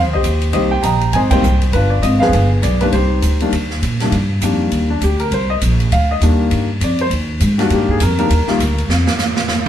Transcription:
Already playing: grand piano C5 D#5
0.03 upright bass D#2
0.13 upright bass C2, grand piano G4 C5 D#5
0.23 upright bass D#2, kick, hi-hat pedal, ride
0.42 ride
0.53 upright bass C2, grand piano D#3 G3 A#3 C4 G4 C5 D#5, kick, ride
0.71 grand piano G5
0.83 upright bass A#1, grand piano D#5 G5 A#5, kick, hi-hat pedal, ride
1.01 ride
1.13 upright bass G#1, grand piano C5 D#5 G#5, kick, ride
1.31 grand piano D#3 G3 A#3 C4 C5 D#5 G5, kick, ride
1.42 upright bass C2, hi-hat pedal
1.62 ride
1.72 upright bass G1, grand piano D4 F4 B4, kick, ride
1.90 grand piano D5
2.02 upright bass G#1, grand piano D#5, kick, hi-hat pedal, ride
2.20 grand piano F3 G#3 B3 D4 G#4 B4 F5, snare
2.33 upright bass G1, kick, ride
2.62 upright bass B1, grand piano D5, kick, hi-hat pedal, ride
2.81 grand piano D#3 G3 A#3 D4 B4, ride
2.92 upright bass C2, grand piano D#4 G4 C5, kick, ride
3.22 upright bass D2, kick, hi-hat pedal, ride
3.40 grand piano D#3 G3 A#3 D4, ride
3.52 upright bass D#2, kick, ride
3.71 snare
3.82 upright bass A#2, kick, hi-hat pedal, ride
4.00 grand piano C2 D#3 G3 A#3 D4, snare, ride
4.11 upright bass G2, kick, ride
4.41 upright bass F2, grand piano D#3 G3 A#3 D4, kick, hi-hat pedal, ride
4.71 upright bass D#2, kick, ride
4.90 grand piano D4
5.01 upright bass D2, grand piano G4, kick, hi-hat pedal, ride
5.20 grand piano A#4, ride
5.31 upright bass C2, grand piano C5, kick, ride
5.50 grand piano D#5
5.61 upright bass A#1, kick, hi-hat pedal, ride
5.80 ride
5.91 upright bass D2, grand piano F5, kick, ride
6.11 grand piano D#5
6.21 upright bass D#2, grand piano D#3 G3 A#3 D4, kick, hi-hat pedal, ride
6.51 upright bass G2, kick, ride
6.80 upright bass F2, grand piano D5, kick, hi-hat pedal, ride
6.99 grand piano C5, ride
7.10 upright bass D#2, kick, ride
7.40 upright bass G#2, kick, hi-hat pedal, ride
7.58 grand piano D#3 G3 A#3 D4 F#4, snare, ride
7.70 upright bass G2, grand piano G4, kick, ride
7.88 grand piano G#4, kick
8.00 upright bass F2, grand piano A#4, kick, hi-hat pedal, ride
8.18 grand piano D#3 G3 A#3 D4 A#4, ride
8.30 upright bass D#2, kick, ride
8.47 grand piano D#3 G3 A#3 F4, muted upright bass stroke, snare
8.59 upright bass D2, kick, hi-hat pedal, ride
8.78 ride
8.88 upright bass F2, snare
9.07 snare
9.19 snare, hi-hat pedal
9.37 snare
9.48 snare

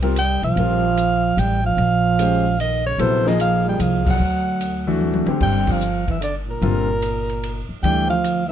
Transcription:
Already playing: upright bass C2
0.02 grand piano G3 C4 F4 A#4, ride
0.16 trombone G3, soprano saxophone G5, hi-hat pedal, ride
0.42 upright bass B1, trombone F3, soprano saxophone F5, ride
0.56 upright bass A#1, grand piano G3 C4 F4 A#4, ride
0.97 hi-hat pedal, ride
1.37 upright bass A1, trombone G3, soprano saxophone G5, hi-hat pedal, ride
1.64 trombone F3, soprano saxophone F5
1.77 upright bass A#1, ride
2.19 grand piano G#3 C#4 G4 C5, hi-hat pedal, ride
2.59 trombone D#3, soprano saxophone D#5, ride
2.86 trombone C#3, soprano saxophone C#5
2.97 upright bass A#1, trombone C3, grand piano F#3 B3 E4 A4, soprano saxophone C5, ride
3.24 trombone D#3, grand piano F3 A#3 D#4 G#4, snare
3.28 soprano saxophone D#5
3.39 trombone F3, soprano saxophone F5, hi-hat pedal, ride
3.66 trombone G3, soprano saxophone G5
3.79 upright bass C2, trombone F3, soprano saxophone F5, hi-hat pedal, ride
4.05 trombone F#3, kick, crash
4.10 soprano saxophone F#5
4.20 upright bass D2
4.61 hi-hat pedal, ride
4.87 grand piano E3 A3 D4 F#4
5.01 high tom
5.14 high tom
5.26 grand piano D3 G3 C4 G4, muted upright bass stroke, high tom
5.39 upright bass G1, trombone G3, soprano saxophone G5, kick, crash
5.67 trombone F3, kick, crash
5.72 soprano saxophone F5
5.81 hi-hat pedal
6.07 trombone E3, soprano saxophone E5, kick, ride
6.20 trombone D3, soprano saxophone D5, hi-hat pedal, ride
6.47 trombone A#2, soprano saxophone A#4
6.62 upright bass G1, grand piano D3 G3 C4 F4, ride
7.02 hi-hat pedal, ride
7.29 ride
7.43 ride
7.69 muted upright bass stroke
7.82 upright bass D2, grand piano E3 A3 D4 G4, trombone G3, soprano saxophone G5, ride
8.07 trombone F3, soprano saxophone F5, ride
8.24 hi-hat pedal, ride
8.47 trombone E3, soprano saxophone E5

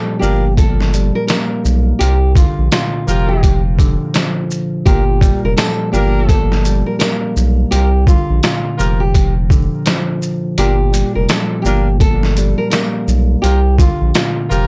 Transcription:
Already playing: tine electric piano A#2 F3 G3, nylon-string guitar A4
0.19 sub bass G1, tine electric piano A#3, horn section A#3 D4 F4 A#4, nylon-string guitar G4, shaker
0.57 nylon-string guitar A4, kick, closed hi-hat
0.81 snare
0.94 tine electric piano G3, closed hi-hat, shaker
1.15 nylon-string guitar A#4
1.27 tine electric piano A#3, nylon-string guitar A#4, snare, closed hi-hat, tambourine
1.65 sub bass B1, shaker
1.99 tine electric piano C2, sub bass C2, horn section A#3 F4 G4 A#4, nylon-string guitar G4, closed hi-hat
2.36 tine electric piano D3, nylon-string guitar F4, kick, closed hi-hat, shaker
2.58 sub bass A#1
2.72 tine electric piano A#2, nylon-string guitar F4, snare, closed hi-hat, tambourine
3.07 sub bass F1, tine electric piano F3, horn section A#3 F4 G4 A#4, shaker
3.28 nylon-string guitar G4
3.43 kick, closed hi-hat
3.79 tine electric piano D3, kick, closed hi-hat, shaker
4.14 tine electric piano F3, snare, closed hi-hat, tambourine
4.51 shaker
4.85 sub bass G1, tine electric piano A#2, horn section A#3 D4 F4 A#4, nylon-string guitar G4, kick, closed hi-hat
5.21 tine electric piano G3, kick, closed hi-hat, shaker
5.44 sub bass F1, nylon-string guitar A#4
5.57 tine electric piano F3, nylon-string guitar A4, snare, closed hi-hat, tambourine
5.92 sub bass G1, tine electric piano A#3, horn section A#3 D4 F4 A#4, nylon-string guitar G4, shaker
6.29 nylon-string guitar A4, kick, closed hi-hat
6.52 snare
6.65 tine electric piano G3, closed hi-hat, shaker
6.86 nylon-string guitar A#4
6.99 tine electric piano A#3, nylon-string guitar A#4, snare, closed hi-hat, tambourine
7.36 sub bass B1, shaker
7.71 tine electric piano C2, sub bass C2, horn section A#3 F4 G4 A#4, nylon-string guitar G4, closed hi-hat
8.07 tine electric piano D3, nylon-string guitar F4, kick, shaker
8.30 sub bass A#1
8.43 tine electric piano A#2, nylon-string guitar F4, snare, closed hi-hat, tambourine
8.78 sub bass F1, tine electric piano F3, horn section A#3 F4 G4 A#4, shaker
9.00 nylon-string guitar G4
9.15 kick, closed hi-hat
9.50 tine electric piano D3, kick, shaker
9.86 tine electric piano F3, snare, closed hi-hat, tambourine
10.22 shaker
10.58 sub bass G1, tine electric piano A#2, horn section A#3 D4 F4 A#4, nylon-string guitar G4, closed hi-hat
10.93 tine electric piano G3, closed hi-hat, shaker
11.15 sub bass F1, nylon-string guitar A#4
11.29 tine electric piano F3, nylon-string guitar A4, snare, closed hi-hat, tambourine
11.62 sub bass G1, tine electric piano A#3, horn section A#3 D4 F4 A#4, nylon-string guitar G4, shaker
12.00 nylon-string guitar A4, kick, closed hi-hat
12.23 snare
12.37 tine electric piano G3, closed hi-hat, shaker
12.58 nylon-string guitar A#4
12.70 tine electric piano A#3, nylon-string guitar A#4, snare, closed hi-hat, tambourine
13.08 sub bass B1, shaker
13.42 sub bass C2, tine electric piano C2, horn section A#3 F4 G4 A#4, nylon-string guitar G4, closed hi-hat
13.78 tine electric piano D3, nylon-string guitar F4, kick, closed hi-hat, shaker
14.01 sub bass A#1
14.14 tine electric piano A#2, nylon-string guitar F4, snare, closed hi-hat, tambourine
14.50 sub bass F1, tine electric piano F3, horn section A#3 F4 G4 A#4, shaker

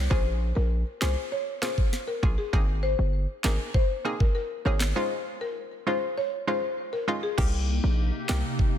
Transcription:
0.10 808-style bass A#1, synth pluck A#3 C#4 F4 G#4, marimba C5, kick
0.55 808-style bass A#1, marimba A#4
1.01 808-style bass C2, synth pluck A#3 C#4 F4 G#4, marimba C5, snare, clap
1.32 marimba C#5
1.62 synth pluck A#3 C#4 F4 G#4, marimba C5, snare, clap
1.78 kick
1.93 snare
2.08 marimba A#4
2.23 808-style bass A#1, synth pluck A#3 C#4 F4 G#4, kick
2.38 marimba G#4
2.53 808-style bass G#1, synth pluck A#3 C4 D#4 G#4, kick
2.83 marimba C5
2.99 808-style bass G1
3.44 808-style bass G#1, synth pluck A#3 C4 D#4 G#4, marimba A#4, snare, clap
3.74 marimba C5, kick
4.05 synth pluck A#3 C4 D#4 G#4
4.20 marimba A#4, kick
4.35 marimba A#4
4.65 808-style bass G#1, synth pluck A#3 C4 D#4 G#4, marimba C#5
4.80 snare, clap
4.96 synth pluck G#3 C#4 D#4 F4, marimba C5
5.41 marimba A#4
5.87 synth pluck G#3 C#4 D#4 F4, marimba C5
6.18 marimba C#5
6.47 synth pluck G#3 C#4 D#4 F4, marimba C5
6.93 marimba A#4
7.08 synth pluck G#3 C#4 D#4 F4
7.23 marimba G#4
7.38 808-style bass C2, ambient pad C3 A#3 D#4 G4, synth pluck A#3 C4 D#4 G4, kick, crash
7.84 808-style bass A#1
8.29 808-style bass C2, synth pluck A#3 C4 D#4 G4, snare, clap
8.59 kick

